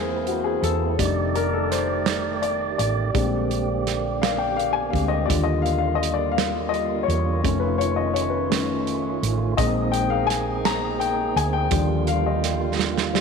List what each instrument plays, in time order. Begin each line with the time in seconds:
Already playing: fingered electric bass E2, tonewheel organ E3 A#3 C4 E4, upright piano G#3 A#3 E4 G#4 A#4 C5, french horn section A#3 C4 E4 C5
0.27 upright piano F#4, closed hi-hat
0.44 upright piano G#4
0.62 fingered electric bass E2, upright piano A4, closed hi-hat
0.98 fingered electric bass F1, tonewheel organ D#3 A3 F#4 D5, french horn section D#3 A3 G4 D5, upright piano G3 A3 D4 D#4, kick, closed hi-hat
1.05 tonewheel organ G4
1.35 upright piano A#4, closed hi-hat
1.53 upright piano A4
1.71 upright piano C5, snare, closed hi-hat
2.06 snare, closed hi-hat
2.42 upright piano D5, closed hi-hat
2.78 fingered electric bass A1, upright piano D5, closed hi-hat
3.14 fingered electric bass A#1, tonewheel organ C#3 A#3 C4 G4, upright piano G3 G#3 C4 D4, french horn section A#3, kick, closed hi-hat
3.18 french horn section C4
3.22 tonewheel organ D3
3.51 closed hi-hat
3.87 snare, closed hi-hat
4.22 upright piano F5, snare, closed hi-hat
4.38 upright piano G5
4.56 upright piano F5, closed hi-hat
4.73 upright piano G#5
4.90 fingered electric bass D2, upright piano G3 G#3 C4 D4 F5, kick
4.95 closed hi-hat
5.08 upright piano D#5
5.26 upright piano D3 G3 F4 D5
5.30 fingered electric bass D#2, tonewheel organ D3 G3 A#3 F4, french horn section G3 A#3 F4, kick, closed hi-hat
5.44 upright piano D#5
5.62 upright piano F5, closed hi-hat
5.78 upright piano F5
5.95 upright piano D#5
6.03 closed hi-hat
6.14 upright piano D5
6.32 upright piano F5
6.38 snare, closed hi-hat
6.69 upright piano D#5
6.74 closed hi-hat
7.03 upright piano C#5
7.08 fingered electric bass E2, closed hi-hat
7.44 fingered electric bass F1, upright piano D#3 A3 C#4, tonewheel organ D#3 A3 C#4 F4, french horn section A3 C#4, kick, closed hi-hat
7.60 upright piano B4
7.78 upright piano C#5, closed hi-hat
7.96 upright piano D#5
8.14 upright piano C#5, closed hi-hat
8.30 upright piano B4
8.49 upright piano D#3 A3 C#4, snare, closed hi-hat
8.87 closed hi-hat
9.23 fingered electric bass A1, closed hi-hat
9.57 fingered electric bass A#1, upright piano D#3 G#3 C4 D#5, french horn section A#3 C4 G#4, tonewheel organ A#3 C4 D#4 G#4, kick, closed hi-hat
9.92 upright piano G5, closed hi-hat
10.10 upright piano F5
10.27 upright piano G#5, snare, closed hi-hat
10.65 upright piano A#5, snare, closed hi-hat
11.00 upright piano G5, closed hi-hat
11.36 fingered electric bass D2, upright piano G#5, closed hi-hat
11.53 upright piano G5
11.71 fingered electric bass D#2, tonewheel organ D3 G3 A#3 F4, french horn section D3 G3 F4, upright piano F3 G3 D4, kick, closed hi-hat
12.07 upright piano F5, closed hi-hat
12.26 upright piano D#5
12.44 snare, closed hi-hat
12.79 snare
12.98 snare
13.13 upright piano F3 G3 D4, snare